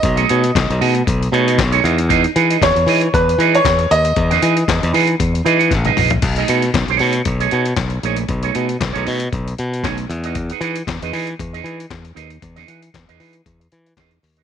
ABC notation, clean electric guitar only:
X:1
M:4/4
L:1/16
Q:"Swing 16ths" 1/4=116
K:E
V:1 name="Clean electric guitar"
z [A,DGd] [A,DGc] z3 [A,DGd] z3 [A,DGc] [A,DGd] z [A,DGc] [DGBd] z | [DGBd] z [DGBf] [DGBd] z2 [DGBd] z3 [DGBd] [DGBd] z4 | z [DGBf] [DGBd] z3 [DGBf] z3 [DGBd] [DGBf] z [DGBd] [DGBd] z | z [A,DGd] [A,DGd] z2 [A,DGc] [A,DGc] z2 [A,DGc] [A,DGc] z3 [A,DGc] z |
z [A,DGc] [A,DGd] z2 [A,DGc] [A,DGd] z4 z [A,DGc] z2 [DGBd] | z [DGBf] [DGBf] z2 [DGBd] [DGBd] z2 [DGBd] [DGBd] z3 [DGBd] z | z [DGBd] [DGBf] z2 [DGBd] [DGBf] z4 z [DGBd] z2 [DGBd] |]